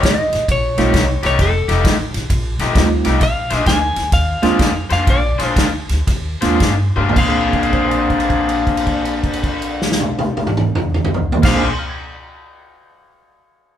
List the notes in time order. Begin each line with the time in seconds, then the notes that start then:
Already playing: F3 A3 D#4 G4
0.03 A1 D#5, kick, snare, ride
0.33 A1, snare, ride
0.48 A#1 C#5, kick, ride
0.78 A#1 F3 G3 A3 C4 D#4 F4 G4, snare, ride
0.94 C2, kick, snare, ride
1.23 C2 F3 A3 D#4 G4 C#5, snare, ride
1.39 F1 A4, kick, snare, ride
1.68 F1 F3 A3 D#4 G4, snare, ride
1.85 A1, kick, snare, ride
2.14 A1, snare, ride
2.30 A#1, kick, ride
2.59 A#1 F3 A3 D#4 G4, snare, ride
2.75 D2 G3 A3 C4 D#4 F4, kick, snare, ride
3.05 C2 F3 A3 D#4 G4, snare, ride
3.21 A#1 F5, kick, snare, ride
3.50 A#1 A#3 D4 G#4 C5, snare, ride
3.66 D2 G#5, kick, snare, ride
3.96 D2, snare, ride
4.12 D#2 F5, kick, snare, ride
4.42 D#2 G#3 A#3 C4 D4 F4 G#4 C5, snare, ride
4.59 F2, kick, snare, ride
4.90 F2 A#3 D4 G#4 C5 F5, snare, ride
5.07 A#1 D5, kick, ride
5.38 A#1 A#3 D4 G#4 C5, snare, ride
5.56 D2, kick, snare, ride
5.89 D2, snare, ride
6.07 D#2, kick, snare, ride
6.41 D#2 G#3 A#3 C4 D4 F4 G#4 C5, snare, ride
6.60 G2, kick, snare, ride
6.96 G2 A#3 D4 G#4 C5, high tom
7.04 A#2
7.09 A#3, floor tom
7.15 A#1 A#3 C4 D4 G#4 F5, kick, crash
7.20 D4 C5
7.29 G#4
7.53 kick, crash
7.63 crash
7.73 C5, kick, crash
7.80 F5
7.89 G#5, crash
7.98 C6
8.08 F6, kick, crash
8.18 G#6, crash
8.30 kick, crash
8.49 crash
8.67 kick, crash
8.77 crash
8.87 kick, crash
9.05 crash
9.23 kick, crash
9.33 crash
9.44 kick, crash
9.62 crash
9.82 snare
9.92 snare
10.00 high tom
10.19 high tom
10.37 high tom
10.47 mid tom
10.57 mid tom
10.75 mid tom
10.94 mid tom
11.05 mid tom
11.14 floor tom
11.31 A#2, floor tom
11.37 A#3
11.43 A#1 A#3 C4 D4 G#4 C5 F5, kick, snare, crash
11.47 D4 C5
11.51 F5
11.56 G#4 G#5
11.68 C6
11.79 F6
11.89 G#6